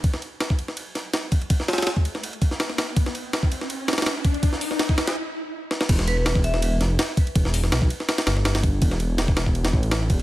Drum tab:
CC |--------------------------------|--------------------------------|--------------------------------|--------------------------------|
RD |x---x---x---x---x---x---x---x-x-|x---xxxxx---x---x-x-x---x---x---|x---x---x---x---x---xxxxx---x-x-|x-------x---x-x-----------------|
HH |--------------------------------|--------------------------------|--------------------------------|----o---------------------------|
SD |--o-----o-----o-----o---o-------|--o-ooooo-----o-------o-o-o-o---|--o-----o-----o-----ooooo-------|--o---o-o---o-o-------------o-o-|
BD |o---------o-----------------o---|o---------o---------o-----------|o---------o-----------------o---|o---------o---------------------|

CC |x-------------------------------|--------------------------------|--------------------------------|
RD |x---x---x---x---x---x---x---x-x-|x-------x---x---x-x-x---x-x-x---|x---x---x---x---x-x---x-x---x-x-|
HH |--------------------------------|----o---------------------------|--------------------------------|
SD |--o-----o-----o-----o---o-------|--o---o-o-----o-o-o-o-o-o-o-----|--o-----o---o-----o-----o-------|
BD |o---------o-----------------o---|o---------o-----------------o---|o---------o---o-----o-------o---|